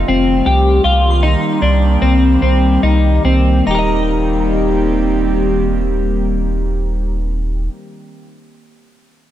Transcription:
Already playing: ambient pad D#3 G3 A3 C4 F4
0.08 sub bass F1, clean electric guitar C4
0.46 sub bass C2, ambient pad D#3 G3 A#3 G4, clean electric guitar G4
0.84 sub bass C2, clean electric guitar F4
1.11 synth bell C6
1.23 clean electric guitar D#4
1.62 sub bass C2, clean electric guitar D4
2.02 sub bass C2, clean electric guitar C4
2.42 sub bass C2, clean electric guitar C4
2.83 sub bass C2, clean electric guitar D#4
3.25 sub bass C2, clean electric guitar C4
3.66 sub bass D#1, ambient pad D#3 G3 A#3 C4 G4, clean electric guitar D#4, synth bell A#5
3.71 clean electric guitar G4 A#4
3.79 clean electric guitar D#5

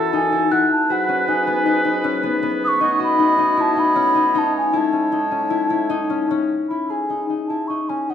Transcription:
Already playing: woodwind section F#2 E3 A4, harp C#4 E4 F#4 A4, flute A5
0.13 harp D#4, flute G#5
0.32 harp E4
0.51 harp E4, flute F#5, glockenspiel F#6
0.72 flute A5
0.89 woodwind section G#2 F#3 B4, harp F#4, flute F#5
1.09 harp C#4
1.28 harp D#4, flute G#5
1.47 harp B3
1.66 harp D#4
1.85 harp D#4
2.04 harp C#4
2.23 harp B3
2.43 harp B3
2.64 flute C#6 D#6
2.81 woodwind section B2 A3 C#5 D#5, harp D#4
3.00 harp F#4, flute B5
3.19 harp D#4
3.38 harp D#4
3.57 harp E4, flute A5
3.76 harp D#4, flute B5
3.96 harp C#4
4.15 harp D#4
4.35 harp D#4, flute A5
4.57 flute G#5
4.73 woodwind section A2 G#3, harp E4, flute A5
4.93 harp C#4
5.12 harp D#4
5.31 harp C#4
5.50 harp E4
5.70 harp E4
5.90 harp D#4
6.10 harp C#4
6.31 harp C#4
6.68 harp E4, flute B5
6.90 harp G#4, flute G#5
7.10 harp D#4
7.30 harp D#4
7.48 harp E4, flute A5
7.67 harp D#4, flute C#6
7.89 harp C#4, flute G#5
8.10 harp D#4, flute F#5

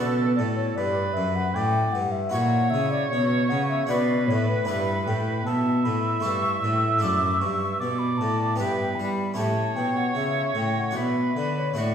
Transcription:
Already playing: harpsichord D4 F#4, oboe A4, flute B4
0.00 harpsichord B2 B4, cello B2
0.36 harpsichord A2, cello A2, flute D5
0.56 flute C#5
0.75 cello G2, harpsichord G2, oboe B4, flute D5
1.13 cello F#2, harpsichord F#2, flute E5
1.36 flute F#5
1.53 cello A2, harpsichord A2, oboe D5, flute G5
1.91 cello G2, flute F#5
1.95 harpsichord G2
2.11 flute E5
2.29 harpsichord E4 F#4 C#5, flute F#5
2.34 cello A#2, harpsichord A#2, oboe C#5
2.70 cello C#3, harpsichord C#3, flute E5
2.91 flute D5
3.09 cello B2, harpsichord B2, flute C#5
3.49 harpsichord C#3, cello C#3, flute F#5
3.69 flute E5
3.87 cello B2, harpsichord D4 F#4 B4, oboe B4, flute D5
3.91 harpsichord B2
4.27 cello A2, harpsichord A2, flute C#5
4.47 flute B4
4.65 cello G2, harpsichord D4 E4 B4, flute B5
4.70 harpsichord G2
5.06 cello A2, harpsichord A2, flute G5
5.45 cello B2, harpsichord B2, oboe E5, flute A5
5.84 cello A2, harpsichord A2, flute B5
6.20 cello G2, harpsichord A3 E4 A4, flute C#6
6.25 harpsichord G2
6.62 cello A2, harpsichord A2, flute E6
6.99 harpsichord A3 D4 A4, flute D6
7.03 cello F#2, harpsichord F#2
7.41 harpsichord G2, cello G2, flute C#6
7.79 harpsichord B2, cello B2, oboe D5, flute D6
7.99 flute B5
8.18 cello A2, harpsichord A2, flute A5
8.56 cello G2, harpsichord B3 E4 G4, oboe B4, flute G5
8.61 harpsichord G2
8.95 cello G3, flute B5
9.00 harpsichord G3
9.34 harpsichord A2 C#4 E4 G4, oboe C#5, flute A5
9.38 cello A2
9.76 cello B2, harpsichord B2, flute G5
9.97 flute F#5
10.15 harpsichord C#3, cello C#3, flute E5
10.55 harpsichord A2, cello A2, flute G5
10.79 flute F#5
10.91 harpsichord D4 F#4
10.95 harpsichord B2, cello B2, oboe B4, flute E5
11.36 cello D3, harpsichord D3, flute D5
11.58 flute C#5
11.74 cello A2, harpsichord A2 A3 D4 F#4, oboe F#4
11.79 flute D5

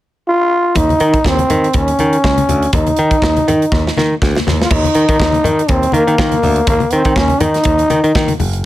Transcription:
0.28 trombone F4
0.75 picked electric bass D#2, trombone D#4, kick, closed hi-hat, muted conga, low conga
0.89 closed hi-hat, high conga
1.00 picked electric bass D#3, closed hi-hat
1.14 kick, closed hi-hat
1.24 picked electric bass D#2, trombone C4, kick, snare, muted conga
1.38 closed hi-hat, high conga
1.50 picked electric bass D#3, closed hi-hat, low conga
1.64 closed hi-hat
1.73 picked electric bass D#2, trombone C#4, kick, closed hi-hat, muted conga, high conga
1.88 closed hi-hat, muted conga
1.99 picked electric bass D#3, closed hi-hat, high conga
2.13 closed hi-hat
2.24 picked electric bass C#2, kick, snare, muted conga
2.38 closed hi-hat, muted conga, high conga
2.49 picked electric bass D2, closed hi-hat, high conga, low conga
2.63 closed hi-hat
2.73 picked electric bass D#2, trombone D#4, kick, closed hi-hat, muted conga, low conga
2.87 closed hi-hat, high conga
2.96 picked electric bass D#3, closed hi-hat
3.11 kick, closed hi-hat
3.22 picked electric bass D#2, kick, snare
3.37 closed hi-hat, high conga
3.48 picked electric bass D#3, closed hi-hat, low conga
3.62 closed hi-hat
3.72 picked electric bass D#2, kick, snare, high conga
3.87 snare, muted conga
3.97 picked electric bass D#3, snare, high conga
4.22 picked electric bass D2, kick, snare, muted conga
4.35 snare, muted conga, high conga
4.47 picked electric bass D#2, snare, high conga, low conga
4.62 trombone F4, snare
4.71 picked electric bass D#2, trombone D#4, kick, crash, muted conga, low conga
4.84 closed hi-hat, muted conga, high conga
4.95 picked electric bass D#3, closed hi-hat
5.09 picked electric bass D#3, kick, closed hi-hat
5.20 picked electric bass D#2, kick, snare, muted conga
5.32 closed hi-hat, muted conga, high conga
5.44 picked electric bass D#3, closed hi-hat, low conga
5.59 closed hi-hat
5.68 picked electric bass D#2, trombone C4, kick, closed hi-hat, high conga
5.82 closed hi-hat, muted conga
5.92 picked electric bass D#3, trombone A#3, closed hi-hat, high conga
6.07 picked electric bass D#3, closed hi-hat
6.18 picked electric bass D#3, kick, snare, muted conga
6.32 closed hi-hat, high conga
6.43 picked electric bass D2, open hi-hat, high conga, low conga
6.56 closed hi-hat
6.67 picked electric bass D#2, trombone A#3, kick, closed hi-hat, muted conga, low conga
6.80 closed hi-hat, muted conga, high conga
6.91 picked electric bass D#3, trombone C4, closed hi-hat
7.05 picked electric bass D#3, kick, closed hi-hat
7.16 picked electric bass D#2, trombone C#4, kick, snare, muted conga
7.28 closed hi-hat, muted conga, high conga
7.40 picked electric bass D#3, trombone D#4, closed hi-hat, low conga
7.54 snare, closed hi-hat
7.64 picked electric bass D#2, kick, closed hi-hat, muted conga, high conga
7.78 closed hi-hat, muted conga
7.90 picked electric bass D#3, closed hi-hat, high conga
8.04 picked electric bass D#3, closed hi-hat
8.15 picked electric bass D#3, kick, snare, muted conga
8.28 closed hi-hat, muted conga, high conga
8.40 picked electric bass F#1, open hi-hat, high conga, low conga
8.53 closed hi-hat

